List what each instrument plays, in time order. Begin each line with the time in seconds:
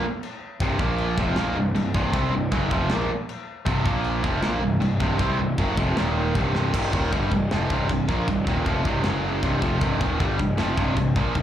0.23 china
0.60 picked electric bass C1, distorted electric guitar C2 G2 C3, kick, china
0.79 picked electric bass A#1, distorted electric guitar A#2 F3 A#3, kick
0.98 china
1.18 picked electric bass F1, distorted electric guitar F2 C3 F3, kick
1.36 picked electric bass A#1, distorted electric guitar A#2 F3 A#3, snare, china
1.55 picked electric bass C1, distorted electric guitar C2 G2
1.74 picked electric bass C1, distorted electric guitar C2 G2, china
1.94 picked electric bass C1, distorted electric guitar C2 G2 C3, kick
2.13 picked electric bass C2, distorted electric guitar C3 G3 C4, kick, china
2.33 picked electric bass C1, distorted electric guitar C2 G2
2.52 picked electric bass F#1, distorted electric guitar F#2 C#3 F#3, kick, china
2.71 picked electric bass F1, distorted electric guitar F2 C3 F3, kick
2.90 picked electric bass A#1, distorted electric guitar A#2 F3 A#3, snare, china
3.29 china
3.65 picked electric bass C1, distorted electric guitar C2 G2 C3, kick, china
3.85 picked electric bass A#1, distorted electric guitar A#2 F3 A#3, kick
4.04 china
4.23 picked electric bass F1, distorted electric guitar F2 C3 F3, kick
4.42 picked electric bass A#1, distorted electric guitar A#2 F3 A#3, snare, china
4.61 picked electric bass C1, distorted electric guitar C2 G2
4.80 picked electric bass C1, distorted electric guitar C2 G2, china
5.00 picked electric bass C1, distorted electric guitar C2 G2 C3, kick
5.19 picked electric bass C2, distorted electric guitar C3 G3 C4, kick, china
5.39 picked electric bass C1, distorted electric guitar C2 G2
5.58 picked electric bass F#1, distorted electric guitar F#2 C#3 F#3, kick, china
5.77 picked electric bass F1, distorted electric guitar F2 C3 F3, kick
5.97 picked electric bass D#1, distorted electric guitar D#2 A#2 D#3, snare, china
6.35 picked electric bass C1, distorted electric guitar C2 G2 C3, kick, china
6.55 snare
6.73 picked electric bass C1, distorted electric guitar C2 G2 C3, kick, crash, china
6.93 picked electric bass D#1, distorted electric guitar D#2 A#2 D#3, kick
7.11 picked electric bass G1, distorted electric guitar G2 D3 G3, kick, china
7.31 picked electric bass C1, distorted electric guitar C2 G2, kick
7.51 picked electric bass F1, distorted electric guitar F2 C3 F3, snare, china
7.70 picked electric bass C1, distorted electric guitar C2 G2 C3, kick
7.89 picked electric bass C1, distorted electric guitar C2 G2, kick, china
8.08 picked electric bass A#1, distorted electric guitar A#2 F3 A#3, kick
8.28 picked electric bass C1, distorted electric guitar C2 G2, kick, china
8.47 picked electric bass D#1, distorted electric guitar D#2 A#2 D#3, kick
8.66 picked electric bass F1, distorted electric guitar F2 C3 F3, kick, china
8.85 picked electric bass C1, distorted electric guitar C2 G2 C3, kick
9.04 picked electric bass F#1, distorted electric guitar F#2 C#3 F#3, snare, china
9.42 picked electric bass C1, distorted electric guitar C2 G2 C3, kick, china
9.61 picked electric bass F1, distorted electric guitar F2 C3 F3, kick
9.79 picked electric bass C1, distorted electric guitar C2 G2 C3, kick, china
10.00 picked electric bass D#1, distorted electric guitar D#2 A#2 D#3, kick
10.19 picked electric bass G1, distorted electric guitar G2 D3 G3, kick, china
10.38 picked electric bass C1, distorted electric guitar C2 G2, kick
10.58 picked electric bass F1, distorted electric guitar F2 C3 F3, snare, china
10.77 picked electric bass C1, distorted electric guitar C2 G2 C3, kick
10.97 picked electric bass C1, distorted electric guitar C2 G2, kick, china
11.16 picked electric bass A#1, distorted electric guitar A#2 F3 A#3, kick
11.35 picked electric bass C1, distorted electric guitar C2 G2, kick, china